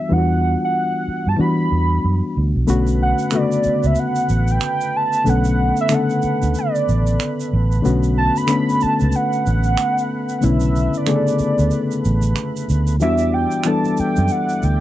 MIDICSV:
0, 0, Header, 1, 7, 480
1, 0, Start_track
1, 0, Key_signature, 2, "minor"
1, 0, Tempo, 645161
1, 74, Time_signature, 4, 2, 24, 8
1, 11013, End_track
2, 0, Start_track
2, 0, Title_t, "Soft synth lead"
2, 0, Program_c, 0, 80
2, 0, Note_on_c, 0, 76, 93
2, 96, Note_on_c, 0, 78, 104
2, 107, Note_off_c, 0, 76, 0
2, 467, Note_off_c, 0, 78, 0
2, 479, Note_on_c, 0, 78, 99
2, 956, Note_on_c, 0, 81, 95
2, 967, Note_off_c, 0, 78, 0
2, 1045, Note_on_c, 0, 83, 86
2, 1056, Note_off_c, 0, 81, 0
2, 1760, Note_off_c, 0, 83, 0
2, 2248, Note_on_c, 0, 78, 86
2, 2490, Note_on_c, 0, 74, 79
2, 2501, Note_off_c, 0, 78, 0
2, 2874, Note_on_c, 0, 76, 86
2, 2885, Note_off_c, 0, 74, 0
2, 2971, Note_on_c, 0, 78, 90
2, 2982, Note_off_c, 0, 76, 0
2, 3356, Note_on_c, 0, 79, 104
2, 3368, Note_off_c, 0, 78, 0
2, 3693, Note_on_c, 0, 81, 108
2, 3704, Note_off_c, 0, 79, 0
2, 3937, Note_on_c, 0, 78, 101
2, 3948, Note_off_c, 0, 81, 0
2, 4308, Note_off_c, 0, 78, 0
2, 4321, Note_on_c, 0, 76, 97
2, 4421, Note_on_c, 0, 78, 93
2, 4433, Note_off_c, 0, 76, 0
2, 4901, Note_on_c, 0, 74, 75
2, 4912, Note_off_c, 0, 78, 0
2, 5608, Note_off_c, 0, 74, 0
2, 6082, Note_on_c, 0, 81, 99
2, 6228, Note_on_c, 0, 83, 113
2, 6240, Note_off_c, 0, 81, 0
2, 6564, Note_on_c, 0, 81, 102
2, 6575, Note_off_c, 0, 83, 0
2, 6811, Note_on_c, 0, 78, 105
2, 6823, Note_off_c, 0, 81, 0
2, 7726, Note_off_c, 0, 78, 0
2, 7726, Note_on_c, 0, 78, 64
2, 7772, Note_on_c, 0, 76, 102
2, 7783, Note_off_c, 0, 78, 0
2, 8163, Note_on_c, 0, 74, 93
2, 8175, Note_off_c, 0, 76, 0
2, 9110, Note_off_c, 0, 74, 0
2, 9685, Note_on_c, 0, 76, 93
2, 9923, Note_on_c, 0, 79, 91
2, 9934, Note_off_c, 0, 76, 0
2, 10168, Note_on_c, 0, 81, 80
2, 10179, Note_off_c, 0, 79, 0
2, 10401, Note_off_c, 0, 81, 0
2, 10414, Note_on_c, 0, 79, 85
2, 10651, Note_on_c, 0, 78, 92
2, 10662, Note_off_c, 0, 79, 0
2, 10894, Note_on_c, 0, 79, 111
2, 10905, Note_off_c, 0, 78, 0
2, 11013, Note_off_c, 0, 79, 0
2, 11013, End_track
3, 0, Start_track
3, 0, Title_t, "Tonewheel organ"
3, 0, Program_c, 1, 16
3, 1991, Note_on_c, 1, 71, 76
3, 1992, Note_on_c, 1, 57, 69
3, 1992, Note_on_c, 1, 59, 60
3, 9643, Note_off_c, 1, 71, 0
3, 9644, Note_off_c, 1, 57, 0
3, 9644, Note_off_c, 1, 59, 0
3, 9687, Note_on_c, 1, 64, 63
3, 9689, Note_on_c, 1, 74, 77
3, 9692, Note_on_c, 1, 55, 70
3, 11013, Note_off_c, 1, 55, 0
3, 11013, Note_off_c, 1, 64, 0
3, 11013, Note_off_c, 1, 74, 0
3, 11013, End_track
4, 0, Start_track
4, 0, Title_t, "Reed electric piano"
4, 0, Program_c, 2, 4
4, 0, Control_c, 2, 64, 127
4, 0, Note_on_c, 2, 52, 73
4, 0, Note_on_c, 2, 55, 64
4, 0, Note_on_c, 2, 59, 65
4, 0, Note_on_c, 2, 62, 56
4, 0, Note_on_c, 2, 66, 72
4, 67, Note_off_c, 2, 52, 0
4, 67, Note_on_c, 2, 52, 65
4, 70, Note_off_c, 2, 55, 0
4, 70, Note_on_c, 2, 55, 59
4, 78, Note_off_c, 2, 59, 0
4, 78, Note_on_c, 2, 59, 53
4, 84, Note_off_c, 2, 62, 0
4, 84, Note_on_c, 2, 62, 51
4, 88, Note_on_c, 2, 65, 54
4, 134, Note_off_c, 2, 66, 0
4, 134, Note_on_c, 2, 66, 67
4, 138, Note_off_c, 2, 65, 0
4, 799, Note_off_c, 2, 52, 0
4, 801, Note_off_c, 2, 55, 0
4, 805, Note_off_c, 2, 59, 0
4, 808, Note_off_c, 2, 62, 0
4, 833, Note_off_c, 2, 66, 0
4, 1018, Note_on_c, 2, 52, 65
4, 1025, Note_on_c, 2, 55, 57
4, 1031, Note_on_c, 2, 59, 60
4, 1035, Note_on_c, 2, 62, 64
4, 1045, Note_on_c, 2, 66, 72
4, 1755, Note_off_c, 2, 52, 0
4, 1759, Note_off_c, 2, 55, 0
4, 1761, Note_off_c, 2, 59, 0
4, 1763, Note_off_c, 2, 62, 0
4, 1768, Note_off_c, 2, 66, 0
4, 1985, Note_on_c, 2, 50, 83
4, 1990, Note_on_c, 2, 57, 81
4, 1995, Note_on_c, 2, 59, 69
4, 1998, Note_on_c, 2, 61, 73
4, 2004, Control_c, 2, 64, 0
4, 2007, Note_on_c, 2, 66, 98
4, 2123, Control_c, 2, 64, 127
4, 2375, Note_off_c, 2, 50, 0
4, 2377, Note_off_c, 2, 57, 0
4, 2380, Note_off_c, 2, 59, 0
4, 2381, Note_off_c, 2, 61, 0
4, 2386, Note_off_c, 2, 66, 0
4, 2471, Note_on_c, 2, 57, 67
4, 2472, Note_on_c, 2, 50, 70
4, 2480, Note_on_c, 2, 59, 64
4, 2485, Note_on_c, 2, 49, 60
4, 2491, Note_on_c, 2, 66, 80
4, 3201, Note_off_c, 2, 57, 0
4, 3202, Note_off_c, 2, 50, 0
4, 3206, Note_off_c, 2, 59, 0
4, 3208, Note_off_c, 2, 49, 0
4, 3211, Note_off_c, 2, 66, 0
4, 3899, Note_on_c, 2, 50, 71
4, 3907, Note_on_c, 2, 57, 67
4, 3914, Note_on_c, 2, 59, 58
4, 3916, Note_on_c, 2, 61, 62
4, 3924, Note_on_c, 2, 69, 68
4, 4291, Note_off_c, 2, 50, 0
4, 4295, Note_off_c, 2, 57, 0
4, 4299, Note_off_c, 2, 59, 0
4, 4300, Note_off_c, 2, 61, 0
4, 4304, Note_off_c, 2, 69, 0
4, 4383, Note_on_c, 2, 50, 77
4, 4389, Note_on_c, 2, 57, 61
4, 4394, Note_on_c, 2, 59, 68
4, 4397, Note_on_c, 2, 49, 61
4, 4406, Note_on_c, 2, 69, 76
4, 5117, Note_off_c, 2, 50, 0
4, 5120, Note_off_c, 2, 57, 0
4, 5123, Note_off_c, 2, 59, 0
4, 5124, Note_off_c, 2, 49, 0
4, 5129, Note_off_c, 2, 69, 0
4, 5822, Note_on_c, 2, 50, 80
4, 5828, Note_on_c, 2, 57, 71
4, 5838, Note_on_c, 2, 59, 81
4, 5844, Note_on_c, 2, 61, 78
4, 5845, Note_on_c, 2, 66, 89
4, 6213, Note_off_c, 2, 50, 0
4, 6216, Note_off_c, 2, 57, 0
4, 6221, Note_off_c, 2, 59, 0
4, 6224, Note_off_c, 2, 61, 0
4, 6225, Note_off_c, 2, 66, 0
4, 6304, Note_on_c, 2, 50, 78
4, 6313, Note_on_c, 2, 57, 73
4, 6319, Note_on_c, 2, 59, 74
4, 6324, Note_on_c, 2, 61, 67
4, 6330, Note_on_c, 2, 69, 76
4, 7038, Note_off_c, 2, 50, 0
4, 7042, Note_off_c, 2, 57, 0
4, 7045, Note_off_c, 2, 59, 0
4, 7048, Note_off_c, 2, 61, 0
4, 7051, Note_off_c, 2, 69, 0
4, 7743, Note_on_c, 2, 49, 55
4, 7748, Note_on_c, 2, 57, 67
4, 7752, Note_on_c, 2, 59, 61
4, 7759, Note_on_c, 2, 61, 67
4, 7765, Note_on_c, 2, 64, 82
4, 7791, Note_on_c, 2, 50, 69
4, 7806, Note_off_c, 2, 49, 0
4, 8136, Note_off_c, 2, 57, 0
4, 8138, Note_off_c, 2, 59, 0
4, 8141, Note_off_c, 2, 61, 0
4, 8145, Note_off_c, 2, 64, 0
4, 8158, Note_off_c, 2, 50, 0
4, 8231, Note_on_c, 2, 50, 73
4, 8232, Note_on_c, 2, 57, 70
4, 8236, Note_on_c, 2, 59, 68
4, 8245, Note_on_c, 2, 49, 68
4, 8249, Note_on_c, 2, 68, 64
4, 8299, Note_off_c, 2, 68, 0
4, 8299, Note_on_c, 2, 69, 77
4, 8961, Note_off_c, 2, 50, 0
4, 8962, Note_off_c, 2, 57, 0
4, 8964, Note_off_c, 2, 59, 0
4, 8968, Note_off_c, 2, 49, 0
4, 8995, Note_off_c, 2, 69, 0
4, 9671, Note_on_c, 2, 52, 66
4, 9674, Note_on_c, 2, 55, 63
4, 9682, Note_on_c, 2, 59, 65
4, 9686, Control_c, 2, 64, 0
4, 9688, Note_on_c, 2, 62, 63
4, 9696, Note_on_c, 2, 66, 78
4, 9799, Control_c, 2, 64, 127
4, 10058, Note_off_c, 2, 52, 0
4, 10059, Note_off_c, 2, 55, 0
4, 10063, Note_off_c, 2, 59, 0
4, 10066, Note_off_c, 2, 62, 0
4, 10070, Note_off_c, 2, 66, 0
4, 10154, Note_on_c, 2, 52, 70
4, 10160, Note_on_c, 2, 55, 65
4, 10165, Note_on_c, 2, 59, 70
4, 10172, Note_on_c, 2, 62, 60
4, 10179, Note_on_c, 2, 69, 80
4, 10883, Note_off_c, 2, 52, 0
4, 10886, Note_off_c, 2, 55, 0
4, 10888, Note_off_c, 2, 59, 0
4, 10892, Note_off_c, 2, 62, 0
4, 10895, Note_off_c, 2, 69, 0
4, 11013, End_track
5, 0, Start_track
5, 0, Title_t, "Fingered electric bass"
5, 0, Program_c, 3, 33
5, 86, Note_on_c, 3, 40, 86
5, 407, Note_off_c, 3, 40, 0
5, 943, Note_on_c, 3, 43, 65
5, 1024, Note_off_c, 3, 43, 0
5, 1038, Note_on_c, 3, 52, 81
5, 1242, Note_off_c, 3, 52, 0
5, 1278, Note_on_c, 3, 40, 83
5, 1482, Note_off_c, 3, 40, 0
5, 1521, Note_on_c, 3, 42, 68
5, 1640, Note_off_c, 3, 42, 0
5, 1763, Note_on_c, 3, 38, 79
5, 1881, Note_off_c, 3, 38, 0
5, 1902, Note_on_c, 3, 35, 74
5, 1983, Note_off_c, 3, 35, 0
5, 1998, Note_on_c, 3, 35, 101
5, 2322, Note_off_c, 3, 35, 0
5, 2859, Note_on_c, 3, 37, 70
5, 2942, Note_off_c, 3, 37, 0
5, 3197, Note_on_c, 3, 33, 95
5, 3401, Note_off_c, 3, 33, 0
5, 3919, Note_on_c, 3, 35, 92
5, 4243, Note_off_c, 3, 35, 0
5, 4783, Note_on_c, 3, 38, 83
5, 4864, Note_off_c, 3, 38, 0
5, 5124, Note_on_c, 3, 33, 89
5, 5325, Note_off_c, 3, 33, 0
5, 5605, Note_on_c, 3, 33, 93
5, 5805, Note_off_c, 3, 33, 0
5, 5845, Note_on_c, 3, 35, 99
5, 6167, Note_off_c, 3, 35, 0
5, 6709, Note_on_c, 3, 37, 80
5, 6788, Note_off_c, 3, 37, 0
5, 7047, Note_on_c, 3, 33, 97
5, 7247, Note_off_c, 3, 33, 0
5, 7767, Note_on_c, 3, 35, 93
5, 8087, Note_off_c, 3, 35, 0
5, 8624, Note_on_c, 3, 38, 71
5, 8704, Note_off_c, 3, 38, 0
5, 8969, Note_on_c, 3, 33, 82
5, 9168, Note_off_c, 3, 33, 0
5, 9448, Note_on_c, 3, 38, 85
5, 9688, Note_off_c, 3, 38, 0
5, 9688, Note_on_c, 3, 40, 92
5, 10008, Note_off_c, 3, 40, 0
5, 10550, Note_on_c, 3, 42, 80
5, 10628, Note_off_c, 3, 42, 0
5, 10888, Note_on_c, 3, 38, 85
5, 11013, Note_off_c, 3, 38, 0
5, 11013, End_track
6, 0, Start_track
6, 0, Title_t, "Muted fingered electric bass strokes"
6, 805, Note_on_c, 9, 29, 38
6, 879, Note_off_c, 9, 29, 0
6, 2721, Note_on_c, 9, 29, 46
6, 2795, Note_off_c, 9, 29, 0
6, 4643, Note_on_c, 9, 29, 48
6, 4717, Note_off_c, 9, 29, 0
6, 6575, Note_on_c, 9, 29, 47
6, 6649, Note_off_c, 9, 29, 0
6, 8484, Note_on_c, 9, 29, 44
6, 8558, Note_off_c, 9, 29, 0
6, 10413, Note_on_c, 9, 29, 48
6, 10487, Note_off_c, 9, 29, 0
6, 11013, End_track
7, 0, Start_track
7, 0, Title_t, "Drums"
7, 1995, Note_on_c, 9, 82, 59
7, 2070, Note_off_c, 9, 82, 0
7, 2134, Note_on_c, 9, 82, 45
7, 2208, Note_off_c, 9, 82, 0
7, 2370, Note_on_c, 9, 82, 48
7, 2444, Note_off_c, 9, 82, 0
7, 2461, Note_on_c, 9, 26, 60
7, 2461, Note_on_c, 9, 82, 67
7, 2536, Note_off_c, 9, 26, 0
7, 2536, Note_off_c, 9, 82, 0
7, 2616, Note_on_c, 9, 82, 39
7, 2690, Note_off_c, 9, 82, 0
7, 2702, Note_on_c, 9, 82, 41
7, 2776, Note_off_c, 9, 82, 0
7, 2851, Note_on_c, 9, 82, 48
7, 2925, Note_off_c, 9, 82, 0
7, 2940, Note_on_c, 9, 82, 54
7, 3015, Note_off_c, 9, 82, 0
7, 3090, Note_on_c, 9, 82, 45
7, 3165, Note_off_c, 9, 82, 0
7, 3192, Note_on_c, 9, 82, 41
7, 3266, Note_off_c, 9, 82, 0
7, 3329, Note_on_c, 9, 82, 49
7, 3404, Note_off_c, 9, 82, 0
7, 3429, Note_on_c, 9, 26, 65
7, 3429, Note_on_c, 9, 82, 61
7, 3504, Note_off_c, 9, 26, 0
7, 3504, Note_off_c, 9, 82, 0
7, 3577, Note_on_c, 9, 82, 47
7, 3651, Note_off_c, 9, 82, 0
7, 3814, Note_on_c, 9, 82, 40
7, 3888, Note_off_c, 9, 82, 0
7, 3916, Note_on_c, 9, 82, 54
7, 3991, Note_off_c, 9, 82, 0
7, 4051, Note_on_c, 9, 82, 45
7, 4126, Note_off_c, 9, 82, 0
7, 4289, Note_on_c, 9, 82, 53
7, 4364, Note_off_c, 9, 82, 0
7, 4383, Note_on_c, 9, 26, 68
7, 4383, Note_on_c, 9, 82, 65
7, 4457, Note_off_c, 9, 26, 0
7, 4457, Note_off_c, 9, 82, 0
7, 4537, Note_on_c, 9, 82, 38
7, 4612, Note_off_c, 9, 82, 0
7, 4629, Note_on_c, 9, 82, 41
7, 4703, Note_off_c, 9, 82, 0
7, 4779, Note_on_c, 9, 82, 48
7, 4853, Note_off_c, 9, 82, 0
7, 4869, Note_on_c, 9, 82, 55
7, 4944, Note_off_c, 9, 82, 0
7, 5025, Note_on_c, 9, 82, 43
7, 5099, Note_off_c, 9, 82, 0
7, 5124, Note_on_c, 9, 82, 43
7, 5198, Note_off_c, 9, 82, 0
7, 5257, Note_on_c, 9, 82, 49
7, 5332, Note_off_c, 9, 82, 0
7, 5356, Note_on_c, 9, 26, 60
7, 5356, Note_on_c, 9, 82, 63
7, 5430, Note_off_c, 9, 26, 0
7, 5430, Note_off_c, 9, 82, 0
7, 5507, Note_on_c, 9, 82, 46
7, 5582, Note_off_c, 9, 82, 0
7, 5741, Note_on_c, 9, 82, 38
7, 5816, Note_off_c, 9, 82, 0
7, 5841, Note_on_c, 9, 82, 56
7, 5916, Note_off_c, 9, 82, 0
7, 5975, Note_on_c, 9, 82, 44
7, 6049, Note_off_c, 9, 82, 0
7, 6221, Note_on_c, 9, 82, 49
7, 6295, Note_off_c, 9, 82, 0
7, 6307, Note_on_c, 9, 26, 65
7, 6307, Note_on_c, 9, 82, 73
7, 6382, Note_off_c, 9, 26, 0
7, 6382, Note_off_c, 9, 82, 0
7, 6468, Note_on_c, 9, 82, 39
7, 6542, Note_off_c, 9, 82, 0
7, 6551, Note_on_c, 9, 82, 39
7, 6625, Note_off_c, 9, 82, 0
7, 6696, Note_on_c, 9, 82, 42
7, 6770, Note_off_c, 9, 82, 0
7, 6784, Note_on_c, 9, 82, 51
7, 6859, Note_off_c, 9, 82, 0
7, 6939, Note_on_c, 9, 82, 43
7, 7013, Note_off_c, 9, 82, 0
7, 7041, Note_on_c, 9, 82, 43
7, 7115, Note_off_c, 9, 82, 0
7, 7168, Note_on_c, 9, 82, 46
7, 7242, Note_off_c, 9, 82, 0
7, 7273, Note_on_c, 9, 26, 61
7, 7273, Note_on_c, 9, 82, 62
7, 7347, Note_off_c, 9, 26, 0
7, 7347, Note_off_c, 9, 82, 0
7, 7425, Note_on_c, 9, 82, 45
7, 7500, Note_off_c, 9, 82, 0
7, 7655, Note_on_c, 9, 82, 40
7, 7730, Note_off_c, 9, 82, 0
7, 7754, Note_on_c, 9, 82, 62
7, 7828, Note_off_c, 9, 82, 0
7, 7888, Note_on_c, 9, 82, 45
7, 7963, Note_off_c, 9, 82, 0
7, 8004, Note_on_c, 9, 82, 45
7, 8078, Note_off_c, 9, 82, 0
7, 8137, Note_on_c, 9, 82, 50
7, 8212, Note_off_c, 9, 82, 0
7, 8233, Note_on_c, 9, 26, 67
7, 8233, Note_on_c, 9, 82, 67
7, 8307, Note_off_c, 9, 26, 0
7, 8307, Note_off_c, 9, 82, 0
7, 8389, Note_on_c, 9, 82, 44
7, 8463, Note_off_c, 9, 82, 0
7, 8472, Note_on_c, 9, 82, 36
7, 8547, Note_off_c, 9, 82, 0
7, 8621, Note_on_c, 9, 82, 46
7, 8695, Note_off_c, 9, 82, 0
7, 8710, Note_on_c, 9, 82, 55
7, 8785, Note_off_c, 9, 82, 0
7, 8862, Note_on_c, 9, 82, 42
7, 8936, Note_off_c, 9, 82, 0
7, 8964, Note_on_c, 9, 82, 46
7, 9038, Note_off_c, 9, 82, 0
7, 9091, Note_on_c, 9, 82, 50
7, 9165, Note_off_c, 9, 82, 0
7, 9194, Note_on_c, 9, 26, 58
7, 9194, Note_on_c, 9, 82, 62
7, 9268, Note_off_c, 9, 26, 0
7, 9268, Note_off_c, 9, 82, 0
7, 9347, Note_on_c, 9, 82, 46
7, 9421, Note_off_c, 9, 82, 0
7, 9445, Note_on_c, 9, 82, 45
7, 9519, Note_off_c, 9, 82, 0
7, 9575, Note_on_c, 9, 82, 40
7, 9650, Note_off_c, 9, 82, 0
7, 9674, Note_on_c, 9, 82, 58
7, 9749, Note_off_c, 9, 82, 0
7, 9807, Note_on_c, 9, 82, 45
7, 9881, Note_off_c, 9, 82, 0
7, 10052, Note_on_c, 9, 82, 50
7, 10126, Note_off_c, 9, 82, 0
7, 10145, Note_on_c, 9, 26, 66
7, 10145, Note_on_c, 9, 82, 73
7, 10219, Note_off_c, 9, 26, 0
7, 10219, Note_off_c, 9, 82, 0
7, 10302, Note_on_c, 9, 82, 40
7, 10376, Note_off_c, 9, 82, 0
7, 10392, Note_on_c, 9, 82, 40
7, 10466, Note_off_c, 9, 82, 0
7, 10537, Note_on_c, 9, 82, 47
7, 10611, Note_off_c, 9, 82, 0
7, 10625, Note_on_c, 9, 82, 52
7, 10699, Note_off_c, 9, 82, 0
7, 10781, Note_on_c, 9, 82, 44
7, 10855, Note_off_c, 9, 82, 0
7, 10883, Note_on_c, 9, 82, 43
7, 10957, Note_off_c, 9, 82, 0
7, 11013, End_track
0, 0, End_of_file